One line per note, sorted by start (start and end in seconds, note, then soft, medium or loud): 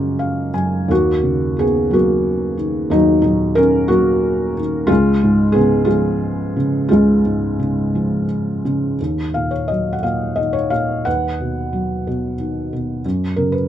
0.00 0.54 F#2 medium
0.00 0.92 C#3 soft
0.00 0.51 F3 medium
0.00 0.92 F#3 medium
0.00 0.50 C#4 medium
0.00 0.92 D#4 medium
0.19 0.52 F5 medium
0.54 0.89 F#2 soft
0.54 0.87 G#5 medium
0.88 2.87 D#2 medium
0.88 1.55 A#3 medium
0.88 1.62 F#4 medium
1.23 2.54 C#3 soft
1.57 2.56 D#3 soft
1.57 1.91 B3 medium
1.57 1.94 G#4 medium
1.91 2.91 F#3 medium
1.91 2.89 A#3 medium
1.91 2.95 F#4 medium
2.58 3.55 D#3 medium
2.90 4.85 D#2 medium
2.90 3.22 F#3 medium
2.90 3.20 D#4 medium
3.22 4.52 A#2 soft
3.22 3.55 F#3 medium
3.22 3.57 D#4 medium
3.55 4.56 D#3 medium
3.55 3.88 C#4 medium
3.55 3.87 A#4 loud
3.88 4.87 F#3 medium
3.88 4.60 A#3 medium
3.88 4.59 F#4 medium
4.57 4.89 D#3 medium
4.87 6.88 C#2 medium
4.87 5.52 G#3 medium
4.87 5.58 F4 loud
5.23 6.54 G#2 medium
5.52 5.87 B3 medium
5.52 5.86 G#4 medium
5.56 6.55 C#3 medium
5.85 6.86 G#3 medium
5.85 6.87 F4 medium
5.90 7.22 F3 medium
6.57 7.58 C#3 medium
6.88 8.95 C#2 medium
6.88 8.25 G#3 medium
6.88 8.24 F4 medium
7.25 8.60 G#2 soft
7.59 8.64 C#3 soft
7.95 8.96 F3 medium
8.65 8.99 C#3 soft
9.01 11.03 D#2 medium
9.34 10.02 A#2 soft
9.34 9.50 F5 medium
9.51 9.69 C#5 soft
9.68 11.03 F#3 soft
9.68 9.94 D#5 medium
9.93 10.02 F#5 medium
10.03 10.70 A#2 soft
10.03 10.39 F5 medium
10.36 11.05 D#3 soft
10.36 10.55 D#5 medium
10.53 10.70 C#5 medium
10.70 11.05 A#2 soft
10.70 11.06 F5 medium
11.05 13.01 D#2 medium
11.05 12.35 B4 medium
11.05 12.35 F#5 medium
11.40 12.06 B2 soft
11.73 13.01 F#3 soft
12.07 12.71 B2 medium
12.40 13.03 D#3 soft
12.73 13.04 B2 soft
13.05 13.68 F#2 medium
13.36 13.68 C#3 soft
13.36 13.54 A#4 medium
13.52 13.68 B4 medium